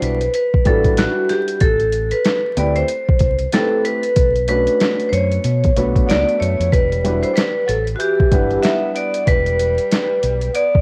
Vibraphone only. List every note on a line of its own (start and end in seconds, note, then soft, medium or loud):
0.03 0.32 B4 medium
0.35 0.67 B4 medium
0.67 0.99 A4 medium
0.98 1.31 F#4 medium
1.29 1.62 G4 medium
1.61 2.13 A4 medium
2.12 2.58 B4 medium
2.58 2.66 D5 medium
2.76 3.49 C5 medium
3.54 3.83 A4 medium
3.85 4.48 B4 medium
4.49 5.08 B4 medium
5.09 5.14 C5 medium
5.09 6.11 C#5 medium
6.09 6.41 D5 medium
6.40 6.70 C#5 medium
6.72 7.19 B4 medium
7.23 7.36 C5 medium
7.36 7.69 B4 medium
7.68 7.80 A4 medium
7.96 8.01 F#4 medium
8.00 8.66 G4 medium
8.63 8.96 E5 loud
8.96 9.29 D5 medium
9.28 10.59 B4 loud
10.56 10.81 D5 loud